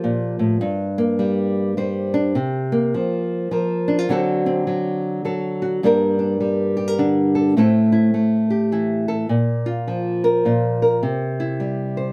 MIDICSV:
0, 0, Header, 1, 2, 480
1, 0, Start_track
1, 0, Tempo, 578035
1, 511, Time_signature, 3, 2, 24, 8
1, 10069, End_track
2, 0, Start_track
2, 0, Title_t, "Nylon-string guitar"
2, 0, Program_c, 0, 24
2, 0, Note_on_c, 0, 53, 56
2, 0, Note_on_c, 0, 58, 59
2, 0, Note_on_c, 0, 65, 60
2, 0, Note_on_c, 0, 67, 62
2, 31, Note_on_c, 0, 46, 58
2, 323, Note_off_c, 0, 46, 0
2, 326, Note_on_c, 0, 45, 59
2, 497, Note_off_c, 0, 65, 0
2, 502, Note_off_c, 0, 45, 0
2, 505, Note_on_c, 0, 43, 72
2, 511, Note_off_c, 0, 53, 0
2, 811, Note_off_c, 0, 58, 0
2, 815, Note_on_c, 0, 58, 59
2, 987, Note_on_c, 0, 55, 60
2, 1461, Note_off_c, 0, 55, 0
2, 1470, Note_on_c, 0, 55, 59
2, 1473, Note_off_c, 0, 67, 0
2, 1476, Note_on_c, 0, 72, 57
2, 1775, Note_on_c, 0, 62, 63
2, 1931, Note_off_c, 0, 55, 0
2, 1934, Note_off_c, 0, 72, 0
2, 1952, Note_off_c, 0, 43, 0
2, 1953, Note_on_c, 0, 48, 72
2, 1956, Note_off_c, 0, 62, 0
2, 2250, Note_off_c, 0, 58, 0
2, 2260, Note_on_c, 0, 58, 58
2, 2434, Note_off_c, 0, 48, 0
2, 2444, Note_on_c, 0, 53, 66
2, 2907, Note_off_c, 0, 53, 0
2, 2917, Note_on_c, 0, 53, 61
2, 2927, Note_on_c, 0, 70, 52
2, 3220, Note_on_c, 0, 62, 59
2, 3310, Note_off_c, 0, 62, 0
2, 3310, Note_on_c, 0, 65, 42
2, 3380, Note_off_c, 0, 70, 0
2, 3396, Note_on_c, 0, 50, 74
2, 3397, Note_off_c, 0, 53, 0
2, 3399, Note_off_c, 0, 65, 0
2, 3400, Note_off_c, 0, 58, 0
2, 3404, Note_on_c, 0, 54, 60
2, 3410, Note_on_c, 0, 60, 60
2, 3416, Note_on_c, 0, 66, 56
2, 3421, Note_on_c, 0, 69, 62
2, 3696, Note_off_c, 0, 60, 0
2, 3706, Note_on_c, 0, 60, 62
2, 3867, Note_off_c, 0, 54, 0
2, 3877, Note_on_c, 0, 54, 59
2, 4347, Note_off_c, 0, 54, 0
2, 4352, Note_off_c, 0, 69, 0
2, 4357, Note_on_c, 0, 54, 59
2, 4362, Note_on_c, 0, 69, 53
2, 4657, Note_off_c, 0, 66, 0
2, 4667, Note_on_c, 0, 66, 53
2, 4815, Note_off_c, 0, 50, 0
2, 4815, Note_off_c, 0, 54, 0
2, 4818, Note_off_c, 0, 69, 0
2, 4821, Note_off_c, 0, 60, 0
2, 4821, Note_off_c, 0, 66, 0
2, 4843, Note_on_c, 0, 43, 66
2, 4848, Note_on_c, 0, 55, 52
2, 4852, Note_on_c, 0, 58, 52
2, 4859, Note_on_c, 0, 62, 50
2, 4866, Note_on_c, 0, 70, 58
2, 5130, Note_off_c, 0, 62, 0
2, 5140, Note_on_c, 0, 62, 50
2, 5308, Note_off_c, 0, 55, 0
2, 5318, Note_on_c, 0, 55, 53
2, 5616, Note_off_c, 0, 70, 0
2, 5619, Note_on_c, 0, 67, 49
2, 5710, Note_off_c, 0, 67, 0
2, 5710, Note_on_c, 0, 70, 45
2, 5794, Note_off_c, 0, 62, 0
2, 5799, Note_on_c, 0, 50, 53
2, 5804, Note_on_c, 0, 62, 50
2, 6097, Note_off_c, 0, 70, 0
2, 6104, Note_on_c, 0, 69, 52
2, 6256, Note_off_c, 0, 50, 0
2, 6256, Note_off_c, 0, 55, 0
2, 6260, Note_off_c, 0, 69, 0
2, 6280, Note_off_c, 0, 43, 0
2, 6281, Note_off_c, 0, 62, 0
2, 6283, Note_on_c, 0, 45, 63
2, 6285, Note_off_c, 0, 58, 0
2, 6287, Note_on_c, 0, 57, 51
2, 6295, Note_on_c, 0, 60, 58
2, 6299, Note_on_c, 0, 64, 52
2, 6304, Note_on_c, 0, 69, 55
2, 6569, Note_off_c, 0, 64, 0
2, 6579, Note_on_c, 0, 64, 56
2, 6748, Note_off_c, 0, 57, 0
2, 6758, Note_on_c, 0, 57, 56
2, 7058, Note_off_c, 0, 69, 0
2, 7061, Note_on_c, 0, 67, 48
2, 7234, Note_off_c, 0, 64, 0
2, 7241, Note_on_c, 0, 52, 53
2, 7245, Note_on_c, 0, 64, 52
2, 7537, Note_off_c, 0, 67, 0
2, 7542, Note_on_c, 0, 69, 56
2, 7694, Note_off_c, 0, 57, 0
2, 7697, Note_off_c, 0, 45, 0
2, 7697, Note_off_c, 0, 52, 0
2, 7698, Note_off_c, 0, 64, 0
2, 7698, Note_off_c, 0, 69, 0
2, 7703, Note_off_c, 0, 60, 0
2, 7717, Note_on_c, 0, 46, 67
2, 8021, Note_on_c, 0, 65, 57
2, 8201, Note_on_c, 0, 53, 56
2, 8504, Note_on_c, 0, 70, 55
2, 8669, Note_off_c, 0, 46, 0
2, 8675, Note_off_c, 0, 65, 0
2, 8679, Note_on_c, 0, 46, 55
2, 8685, Note_on_c, 0, 65, 53
2, 8976, Note_off_c, 0, 70, 0
2, 8987, Note_on_c, 0, 70, 52
2, 9132, Note_off_c, 0, 46, 0
2, 9135, Note_off_c, 0, 65, 0
2, 9138, Note_off_c, 0, 70, 0
2, 9154, Note_off_c, 0, 53, 0
2, 9156, Note_on_c, 0, 48, 67
2, 9465, Note_on_c, 0, 64, 55
2, 9632, Note_on_c, 0, 55, 56
2, 9941, Note_on_c, 0, 72, 49
2, 10069, Note_off_c, 0, 48, 0
2, 10069, Note_off_c, 0, 55, 0
2, 10069, Note_off_c, 0, 64, 0
2, 10069, Note_off_c, 0, 72, 0
2, 10069, End_track
0, 0, End_of_file